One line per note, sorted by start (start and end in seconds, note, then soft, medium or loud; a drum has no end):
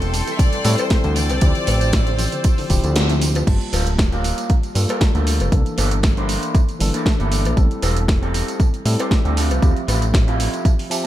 0.00 0.23 E1 medium
0.00 0.08 E3 medium
0.00 0.62 G3 medium
0.00 0.62 C4 medium
0.00 0.62 E4 medium
0.00 0.33 A4 loud
0.00 0.63 A4 medium
0.00 1.15 A4 medium
0.00 3.44 G5 medium
0.00 1.15 C6 medium
0.00 closed hi-hat soft
0.00 tambourine soft
0.14 0.24 G3 loud
0.14 open hi-hat loud
0.14 tambourine medium
0.28 0.31 E3 medium
0.28 closed hi-hat soft
0.28 tambourine soft
0.32 0.39 E5 medium
0.38 0.46 C3 medium
0.38 0.78 D5 loud
0.38 kick loud
0.38 closed hi-hat medium
0.38 tambourine soft
0.53 0.62 E3 loud
0.53 closed hi-hat soft
0.53 tambourine soft
0.65 0.76 A2 loud
0.65 1.15 G3 medium
0.65 0.72 G3 loud
0.65 1.15 C4 medium
0.65 1.15 E4 medium
0.65 1.15 A4 loud
0.65 open hi-hat loud
0.65 tambourine medium
0.78 0.85 E3 loud
0.78 1.16 C5 loud
0.78 closed hi-hat soft
0.78 tambourine soft
0.78 cowbell medium
0.90 0.95 C3 medium
0.90 kick loud
0.90 snare loud
0.90 closed hi-hat medium
0.90 tambourine soft
1.04 1.31 D2 medium
1.04 1.11 E3 medium
1.04 closed hi-hat soft
1.04 tambourine soft
1.16 1.27 E3 loud
1.16 3.45 C5 medium
1.16 2.92 D5 loud
1.16 3.45 E6 medium
1.16 open hi-hat loud
1.16 tambourine medium
1.30 1.39 C2 medium
1.30 1.36 D3 medium
1.30 closed hi-hat soft
1.30 tambourine soft
1.30 cowbell medium
1.41 1.53 D2 loud
1.41 1.49 C3 medium
1.41 2.67 F3 medium
1.41 2.67 C4 medium
1.41 2.68 E4 medium
1.41 2.68 G4 medium
1.41 kick loud
1.41 closed hi-hat loud
1.41 tambourine soft
1.55 1.65 D3 loud
1.55 closed hi-hat soft
1.55 tambourine soft
1.67 2.28 A1 medium
1.67 1.72 D3 medium
1.67 open hi-hat loud
1.67 tambourine medium
1.67 cowbell medium
1.81 1.88 D3 medium
1.81 closed hi-hat soft
1.81 tambourine soft
1.93 2.04 C3 loud
1.93 kick loud
1.93 snare loud
1.93 closed hi-hat loud
1.93 tambourine soft
2.07 2.13 D3 medium
2.07 closed hi-hat soft
2.07 tambourine soft
2.19 2.29 E3 loud
2.19 open hi-hat loud
2.19 tambourine medium
2.32 2.36 D3 medium
2.32 closed hi-hat soft
2.32 tambourine soft
2.44 2.52 C3 medium
2.44 kick loud
2.44 closed hi-hat loud
2.44 tambourine soft
2.58 2.67 D3 loud
2.58 open hi-hat medium
2.58 tambourine soft
2.69 2.81 D1 medium
2.69 2.77 D3 loud
2.69 3.44 F3 medium
2.69 3.44 C4 medium
2.69 3.45 E4 medium
2.69 3.45 G4 medium
2.69 kick medium
2.69 open hi-hat loud
2.69 tambourine medium
2.84 3.43 D2 medium
2.84 2.88 C3 medium
2.84 closed hi-hat soft
2.84 tambourine soft
2.96 3.06 F3 medium
2.96 snare loud
2.96 closed hi-hat loud
2.96 tambourine soft
3.09 3.16 A3 loud
3.09 closed hi-hat soft
3.09 tambourine soft
3.22 3.29 C3 medium
3.22 open hi-hat loud
3.22 tambourine medium
3.35 3.44 F3 loud
3.35 closed hi-hat soft
3.35 tambourine soft
3.35 cowbell medium
3.47 3.58 G1 loud
3.47 4.72 G3 medium
3.47 4.73 A#3 medium
3.47 4.73 F4 medium
3.47 4.73 A5 medium
3.47 kick loud
3.47 closed hi-hat soft
3.47 tambourine soft
3.47 crash medium
3.61 closed hi-hat soft
3.61 tambourine soft
3.72 4.33 D1 medium
3.72 3.87 A#3 loud
3.72 3.87 F4 medium
3.72 3.87 A4 loud
3.72 open hi-hat loud
3.72 tambourine medium
3.72 cowbell medium
3.87 closed hi-hat medium
3.87 tambourine soft
3.98 muted clean electric guitar stroke soft
3.98 kick loud
3.98 snare loud
3.98 closed hi-hat medium
3.98 tambourine soft
4.12 4.50 A#3 medium
4.12 4.50 F4 medium
4.12 4.50 G4 loud
4.12 closed hi-hat soft
4.12 tambourine soft
4.24 open hi-hat loud
4.24 tambourine medium
4.38 closed hi-hat soft
4.38 tambourine soft
4.50 kick loud
4.50 closed hi-hat medium
4.50 tambourine soft
4.63 closed hi-hat soft
4.63 tambourine soft
4.75 4.86 G2 medium
4.75 5.49 G3 medium
4.75 5.50 A#3 medium
4.75 5.50 F4 medium
4.75 5.50 A4 medium
4.75 open hi-hat loud
4.75 tambourine medium
4.89 5.01 A#3 loud
4.89 5.01 F4 loud
4.89 5.01 A4 loud
4.89 closed hi-hat medium
4.89 tambourine soft
4.89 cowbell medium
5.01 kick loud
5.01 snare loud
5.01 closed hi-hat medium
5.01 tambourine soft
5.15 5.42 D2 medium
5.15 5.46 A#3 medium
5.15 5.47 F4 medium
5.15 5.47 A4 medium
5.15 closed hi-hat soft
5.15 tambourine soft
5.27 open hi-hat loud
5.27 tambourine medium
5.40 5.50 F1 loud
5.40 closed hi-hat medium
5.40 tambourine soft
5.40 cowbell medium
5.52 5.63 C2 medium
5.52 6.77 E3 medium
5.52 6.78 A#3 medium
5.52 6.78 D4 medium
5.52 6.78 A4 medium
5.52 kick loud
5.52 closed hi-hat medium
5.52 tambourine soft
5.66 closed hi-hat soft
5.66 tambourine soft
5.78 6.38 G1 medium
5.78 5.92 A#3 loud
5.78 5.92 D4 loud
5.78 5.92 E4 loud
5.78 5.92 A4 loud
5.78 open hi-hat loud
5.78 tambourine medium
5.78 cowbell medium
5.91 closed hi-hat medium
5.91 tambourine soft
6.03 muted clean electric guitar stroke soft
6.03 kick loud
6.03 snare loud
6.03 closed hi-hat soft
6.03 tambourine soft
6.17 6.55 A#3 medium
6.17 6.55 D4 medium
6.17 6.55 E4 medium
6.17 6.55 C5 loud
6.17 closed hi-hat soft
6.17 tambourine soft
6.29 open hi-hat loud
6.29 tambourine medium
6.43 closed hi-hat soft
6.43 tambourine soft
6.55 kick loud
6.55 closed hi-hat medium
6.55 tambourine soft
6.69 closed hi-hat soft
6.69 tambourine soft
6.79 6.91 G1 medium
6.79 7.54 E3 medium
6.79 7.55 A#3 medium
6.79 7.55 D4 medium
6.79 7.55 A4 medium
6.79 open hi-hat loud
6.79 tambourine medium
6.94 7.06 A#3 loud
6.94 7.06 D4 medium
6.94 7.06 E4 loud
6.94 7.06 A4 loud
6.94 closed hi-hat medium
6.94 tambourine soft
7.06 kick loud
7.06 snare loud
7.06 closed hi-hat soft
7.06 tambourine soft
7.19 7.47 G1 loud
7.19 7.51 A#3 medium
7.19 7.51 D4 medium
7.19 7.52 E4 medium
7.19 7.52 A4 medium
7.19 closed hi-hat soft
7.19 tambourine soft
7.32 open hi-hat loud
7.32 tambourine medium
7.45 7.55 A#1 medium
7.45 closed hi-hat medium
7.45 tambourine soft
7.45 cowbell medium
7.56 7.68 A1 loud
7.56 8.82 G3 medium
7.56 8.83 C4 medium
7.56 8.83 E4 medium
7.56 8.83 A4 medium
7.56 kick loud
7.56 closed hi-hat soft
7.56 tambourine soft
7.71 closed hi-hat soft
7.71 tambourine soft
7.82 8.43 E1 medium
7.82 7.97 C4 loud
7.82 7.97 G4 loud
7.82 7.97 A4 loud
7.82 open hi-hat loud
7.82 tambourine medium
7.82 cowbell medium
7.97 closed hi-hat soft
7.97 tambourine soft
8.08 kick loud
8.08 snare loud
8.08 closed hi-hat soft
8.08 tambourine soft
8.22 8.60 C4 medium
8.22 8.60 G4 medium
8.22 8.60 A4 loud
8.22 closed hi-hat soft
8.22 tambourine soft
8.34 open hi-hat loud
8.34 tambourine medium
8.48 closed hi-hat soft
8.48 tambourine soft
8.60 kick loud
8.60 closed hi-hat soft
8.60 tambourine soft
8.74 closed hi-hat soft
8.74 tambourine soft
8.85 8.96 A2 medium
8.85 9.35 G3 medium
8.85 9.36 C4 medium
8.85 9.36 E4 medium
8.85 9.36 A4 medium
8.85 open hi-hat loud
8.85 tambourine medium
8.99 9.11 C4 loud
8.99 9.11 G4 loud
8.99 9.12 C5 loud
8.99 closed hi-hat soft
8.99 tambourine soft
8.99 cowbell medium
9.11 kick loud
9.11 snare loud
9.11 closed hi-hat soft
9.11 tambourine soft
9.25 9.52 D2 medium
9.25 9.36 C4 medium
9.25 9.37 G4 medium
9.25 9.37 A4 loud
9.25 closed hi-hat soft
9.25 tambourine soft
9.37 9.79 C4 loud
9.37 9.79 E4 medium
9.37 9.79 F4 medium
9.37 9.79 G4 medium
9.37 open hi-hat loud
9.37 tambourine medium
9.50 9.60 C2 medium
9.50 closed hi-hat soft
9.50 tambourine soft
9.50 cowbell medium
9.62 9.73 D2 loud
9.62 10.88 F3 medium
9.62 10.88 C4 medium
9.62 10.89 G4 medium
9.62 10.88 E5 medium
9.62 kick loud
9.62 closed hi-hat soft
9.62 tambourine soft
9.76 closed hi-hat soft
9.76 tambourine soft
9.88 10.48 A1 medium
9.88 10.02 C4 loud
9.88 10.02 E4 loud
9.88 10.02 F4 loud
9.88 10.02 G4 loud
9.88 open hi-hat loud
9.88 tambourine medium
9.88 cowbell medium
10.02 closed hi-hat soft
10.02 tambourine soft
10.14 kick loud
10.14 snare loud
10.14 closed hi-hat medium
10.14 tambourine soft
10.27 10.65 C4 medium
10.27 10.65 E4 medium
10.27 10.65 F4 medium
10.27 10.65 A4 medium
10.27 closed hi-hat soft
10.27 tambourine soft
10.40 open hi-hat loud
10.40 tambourine medium
10.54 closed hi-hat soft
10.54 tambourine soft
10.65 kick loud
10.65 closed hi-hat soft
10.65 tambourine soft
10.79 open hi-hat medium
10.79 tambourine soft
10.90 11.07 F3 medium
10.90 11.07 C4 medium
10.90 11.07 G4 medium
10.90 11.07 E5 medium
10.90 11.05 A5 medium
10.90 open hi-hat loud
10.90 tambourine medium